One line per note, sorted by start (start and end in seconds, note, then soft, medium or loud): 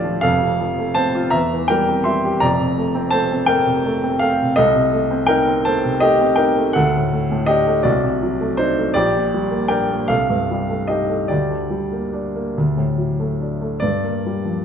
0.00 0.19 D2 medium
0.00 0.27 A2 medium
0.00 0.05 F3 medium
0.00 0.27 A3 medium
0.00 0.27 D4 medium
0.00 0.21 F4 medium
0.00 0.26 G4 medium
0.00 0.23 A4 medium
0.00 0.23 D5 medium
0.00 0.26 E5 medium
0.00 0.21 F5 medium
0.05 0.24 F3 medium
0.21 1.31 F1 medium
0.21 1.31 F2 medium
0.21 0.93 A4 medium
0.21 0.96 F5 loud
0.42 0.72 C3 medium
0.60 0.90 F3 medium
0.79 1.08 A3 medium
0.95 1.27 C4 medium
0.95 1.31 C5 medium
0.95 1.33 A5 loud
1.15 1.34 F4 medium
1.30 2.38 E2 medium
1.30 1.67 E5 medium
1.30 1.69 A#5 loud
1.53 1.82 E3 medium
1.68 2.00 G3 medium
1.68 2.04 A#4 medium
1.68 2.05 G5 loud
1.89 2.17 C4 medium
2.04 2.35 G3 medium
2.04 2.39 E5 medium
2.04 2.41 C6 medium
2.25 2.43 G4 medium
2.40 4.54 F1 medium
2.40 4.55 F2 medium
2.40 3.09 D5 medium
2.40 3.13 A#5 loud
2.59 2.88 C3 medium
2.78 3.07 A3 medium
2.95 3.24 C4 medium
3.11 3.42 A3 medium
3.11 3.46 C5 medium
3.11 3.48 A5 loud
3.32 3.61 C4 medium
3.46 3.78 A3 medium
3.46 4.17 A#4 medium
3.46 4.21 G5 loud
3.67 3.96 C3 medium
3.86 4.15 A3 medium
4.04 4.33 C4 medium
4.19 4.51 A3 medium
4.19 4.55 A4 medium
4.19 4.57 F5 medium
4.42 4.59 C3 medium
4.56 6.72 C2 medium
4.56 5.25 A4 medium
4.56 5.28 D#5 loud
4.76 5.04 C3 medium
4.93 5.22 A3 medium
5.11 5.40 C4 medium
5.27 5.59 D#4 medium
5.27 5.63 A#4 medium
5.27 5.65 G5 loud
5.48 5.77 C4 medium
5.65 5.96 A3 medium
5.65 6.00 C5 medium
5.65 6.02 A5 medium
5.85 6.14 C3 medium
6.00 6.32 A3 medium
6.00 6.36 G4 medium
6.00 6.38 D#5 loud
6.21 6.51 C4 medium
6.36 6.68 D#4 medium
6.36 6.73 A#4 medium
6.36 6.74 G5 medium
6.57 6.76 A3 medium
6.73 7.83 D2 medium
6.73 7.46 A4 medium
6.73 7.49 F#5 loud
6.96 7.25 A2 medium
7.12 7.43 A3 medium
7.31 7.61 A2 medium
7.46 7.79 D4 medium
7.46 7.83 G4 medium
7.46 7.85 D#5 loud
7.67 7.86 A3 medium
7.83 8.92 C2 medium
7.83 8.54 F#4 medium
7.83 8.57 D5 medium
8.04 8.33 C3 medium
8.22 8.52 F#3 medium
8.41 8.70 A3 medium
8.57 8.89 D4 medium
8.57 8.93 D#4 medium
8.57 8.95 C5 medium
8.79 8.97 A3 medium
8.94 10.06 A#1 medium
8.94 9.66 G4 medium
8.94 9.70 D5 loud
9.16 9.45 A#2 medium
9.34 9.64 G3 soft
9.51 9.82 A#3 medium
9.68 10.02 D4 medium
9.68 10.06 A#4 medium
9.68 10.08 G5 medium
9.90 10.10 A#3 medium
10.08 11.26 C2 medium
10.08 10.85 A4 medium
10.08 10.88 F5 medium
10.30 10.62 G2 medium
10.51 10.82 G3 medium
10.69 11.01 A3 soft
10.88 11.22 D#4 soft
10.88 11.27 G4 medium
10.88 11.29 D#5 medium
11.10 11.30 A3 soft
11.28 12.53 D2 medium
11.28 13.37 G4 medium
11.28 13.40 D5 medium
11.50 11.84 D3 soft
11.70 12.05 G3 soft
11.92 12.27 A#3 soft
12.13 12.48 D4 soft
12.36 12.57 A#3 soft
12.58 13.80 D2 medium
12.77 13.11 A2 soft
12.98 13.32 F#3 soft
13.20 13.54 A3 soft
13.41 13.75 D4 soft
13.62 13.83 A3 soft
13.80 14.65 G2 medium
13.80 14.65 D5 medium
14.04 14.37 A#3 soft
14.26 14.58 G3 soft
14.45 14.65 F3 soft